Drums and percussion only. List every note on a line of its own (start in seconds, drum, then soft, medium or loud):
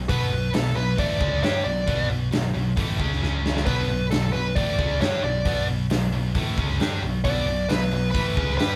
0.09 kick loud
0.09 open hi-hat medium
0.54 snare loud
0.54 open hi-hat medium
0.98 kick loud
0.98 open hi-hat medium
1.21 kick loud
1.43 snare loud
1.43 open hi-hat medium
1.55 snare soft
1.88 kick loud
1.88 open hi-hat medium
2.32 snare loud
2.32 open hi-hat medium
2.77 kick loud
2.77 open hi-hat medium
3.00 kick loud
3.13 snare soft
3.23 snare medium
3.46 snare medium
3.57 snare medium
3.66 kick loud
3.66 open hi-hat medium
4.11 snare loud
4.11 open hi-hat medium
4.56 kick loud
4.56 open hi-hat medium
4.79 kick loud
5.01 snare loud
5.01 open hi-hat soft
5.13 snare soft
5.45 kick loud
5.45 open hi-hat medium
5.90 snare loud
5.90 open hi-hat medium
6.35 kick loud
6.35 open hi-hat medium
6.58 kick loud
6.70 snare soft
6.80 snare loud
6.80 open hi-hat medium
6.93 snare soft
7.25 kick loud
7.25 open hi-hat medium
7.70 snare loud
7.70 open hi-hat medium
8.15 kick loud
8.15 open hi-hat medium
8.37 kick loud
8.50 snare soft
8.60 snare loud
8.60 open hi-hat medium